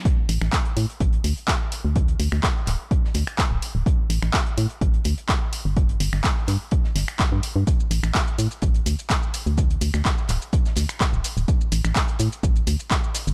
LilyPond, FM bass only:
\new Staff \with { instrumentName = "FM bass" } { \clef bass \time 4/4 \key d \major \tempo 4 = 126 r8 a,,16 a,,16 r8 a,16 r16 a,,16 r16 d,16 r4 d,16~ | d,8 d,16 d,16 r8 d,,16 r8. d,16 r8 d,,16 r16 d,,16 | r8 a,,16 a,,16 r8 a,16 r16 a,,16 r16 d,16 r4 g,,16~ | g,,8 g,,16 g,,16 r8 g,16 r8. g,,16 r8 g,16 r16 g,16 |
r8 a,,16 a,,16 r8 a,16 r16 a,,16 r16 d,16 r4 d,16~ | d,8 d,16 d,16 r8 d,,16 r8. d,16 r8 d,,16 r16 d,,16 | r8 a,,16 a,,16 r8 a,16 r16 a,,16 r16 d,16 r4 g,,16 | }